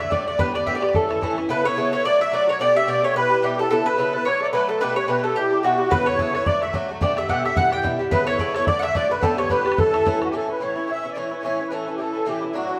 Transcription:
0.00 D3 A3 F#4 E5
0.10 A2 D3 A3 F#4 D5, bodhran
0.26 D3 A3 F#4 D5
0.38 A2 D3 B3 G4 B4, bodhran
0.54 D3 B3 G4 D5, bodhran
0.66 A2 D3 B3 G4 E5, bodhran
0.75 D5
0.81 D3 B3 G4, bodhran
0.89 bodhran
0.93 A2 E3 C#4 E4 A4, bodhran
1.09 E3 C#4 E4, bodhran
1.21 A2 E3 C#4 E4, bodhran
1.36 E3 C#4 E4, bodhran
1.49 C#3 B3 E4 A4 B4
1.64 B3 E4 A4 C#5
1.76 C#3 B3 E4 A4
1.92 B3 E4 A4 C#5
2.04 D3 F#3 A3 F#4 D5
2.19 F#3 A3 F#4 E5
2.32 D3 F#3 A3 F#4 D5
2.47 F#3 A3 F#4 C#5
2.59 B2 D3 A3 G4 D5
2.75 D3 A3 G4 E5
2.87 B2 D3 A3 G4 D5
3.02 D3 A3 G4 C#5
3.14 B2 G3 E4 G4 B4
3.30 G3 E4 G4
3.42 B2 G3 E4 G4
3.58 G3 E4 G4 A4
3.70 C#3 B3 E4 A4
3.85 B3 E4 A4 B4
3.98 C#3 B3 E4 A4
4.13 B3 E4 A4 B4
4.25 D3 F#3 A3 A4 C#5
4.40 F#3 A3 A4 D5
4.53 D3 F#3 A3 A4 B4
4.68 F#3 A3 A4
4.81 B2 D3 A3 G4 B4
4.95 D3 A3 G4 C#5
5.08 B2 D3 A3 G4 B4
5.23 D3 A3 G4 A4
5.36 B2 G3 E4 G4
5.51 G3 E4 G4
5.63 B2 G3 E4 F#4 G4
5.78 G3 E4 G4
5.90 C#3 B3 E4 A4 B4, bodhran
6.06 B3 E4 A4 C#5, bodhran
6.18 C#3 B3 E4 A4, bodhran
6.33 B3 E4 A4 C#5, bodhran
6.45 D3 F#3 A3 F#4 D5, bodhran
6.61 F#3 A3 F#4 E5, bodhran
6.73 D3 F#3 A3 F#4, bodhran
6.89 F#3 A3 F#4
7.01 B2 D3 A3 G4 D5, bodhran
7.16 D3 A3 G4 E5, bodhran
7.29 B2 D3 A3 G4 F#5, bodhran
7.43 D3 A3 G4 E5, bodhran
7.56 B2 G3 E4 G4 F#5, bodhran
7.71 G3 E4 G4 G5, bodhran
7.83 B2 G3 E4 G4, bodhran
7.99 G3 E4 G4
8.11 C#3 B3 E4 A4 B4, bodhran
8.26 B3 E4 A4 C#5, bodhran
8.39 C#3 B3 E4 A4 D5, bodhran
8.54 B3 E4 A4 C#5, bodhran
8.66 A2 D3 A3 F#4 D5 E5, bodhran
8.79 F#4 E5 F#5, bodhran
8.84 D3 A3 E5
8.94 A2 D3 A3 F#4 D5, bodhran
9.09 D3 A3 F#4 B4
9.21 A2 D3 B3 G4 A4, bodhran
9.37 D3 B3 G4 C#5, bodhran
9.49 A2 D3 B3 G4 B4, bodhran
9.65 D3 B3 G4, bodhran
9.72 bodhran
9.77 A2 E3 C#4 E4 A4, bodhran
9.93 E3 C#4 E4, bodhran
10.05 A2 E3 C#4 E4, bodhran
10.20 E3 C#4 E4 F#4, bodhran
10.30 A2 E3 C#4 G4
10.34 E4 A4
10.48 E3 C#4 E4 B4
10.60 A2 E3 C#4 E4 C#5
10.76 E3 C#4 E4
10.87 A2 E3 C#4 E4 E5
11.03 E3 C#4 E4
11.12 A2 D5
11.16 E3 C#4 E4 C#5
11.26 C#5
11.31 E3 C#4 E4
11.38 C#5
11.43 A2 E3 C#4 E4
11.47 C#5
11.58 E3 C#4 E4
11.68 A2 E3 B4
11.72 C#4 E4 A4
11.86 E3 C#4 E4
11.95 A2 E3 G4
12.00 C#4 E4 A4
12.13 E3 C#4 E4
12.26 A2 E3 C#4 E4 G4
12.41 E3 C#4 E4
12.51 A2 F#3 E4
12.55 D4 E4 F#4
12.69 F#3 D4 E4

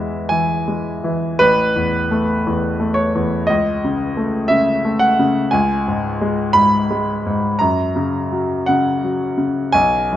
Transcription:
Already playing: E2 E3 G#3 E5
0.29 E3 G#5
0.68 G#3
1.04 E3
1.39 A1 B4
1.76 E2
2.11 A3
2.47 E2
2.80 A3
2.94 C#5
3.15 E2
3.47 C#2 D#5
3.84 C#3
4.17 A3
4.48 C#3 E5
4.85 A3
4.99 F#5
5.19 C#3
5.51 C#2 G#5
5.88 G#2
6.21 G#3
6.53 G#2 B5
6.91 G#3
7.26 G#2
7.59 F#2 A#5
7.96 C#3
8.32 F#3
8.66 C#3 F#5
9.04 F#3
9.38 C#3
9.72 B1 G#5
10.12 F#2

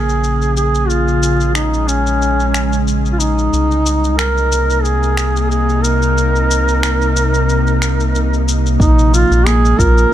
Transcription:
Already playing: A#1 C#3 A#3 G#4
0.09 shaker
0.24 shaker
0.42 shaker
0.56 G#4, shaker
0.75 shaker
0.88 G#3 F4, shaker
1.08 shaker
1.23 shaker
1.41 shaker
1.54 D#4, finger snap, shaker
1.74 shaker
1.88 C#4, shaker
2.07 shaker
2.22 shaker
2.40 shaker
2.54 finger snap, shaker
2.73 shaker
2.88 shaker
3.06 shaker
3.13 F4
3.19 D#4, shaker
3.38 shaker
3.52 C2 C3 A#3 D#4, shaker
3.71 shaker
3.86 shaker
4.04 shaker
4.18 A#4, finger snap, shaker
4.37 shaker
4.52 shaker
4.70 shaker
4.84 G#4, shaker
5.03 shaker
5.17 finger snap, shaker
5.36 shaker
5.50 G#4, shaker
5.69 shaker
5.83 A#4, shaker
6.02 shaker
6.18 shaker
6.36 shaker
6.51 shaker
6.68 shaker
6.83 finger snap, shaker
7.02 shaker
7.16 shaker
7.34 shaker
7.49 shaker
7.67 shaker
7.82 finger snap, shaker
8.00 shaker
8.15 shaker
8.34 shaker
8.48 shaker
8.66 shaker
8.80 A#1 A#2 G#3 A#3 C#4 D#4, kick, shaker
8.99 shaker
9.13 F3 F4, shaker
9.31 A#1, shaker
9.46 A#3 G#4, finger snap, shaker
9.65 shaker
9.79 A#1 F4 A#4, kick, shaker
9.98 shaker

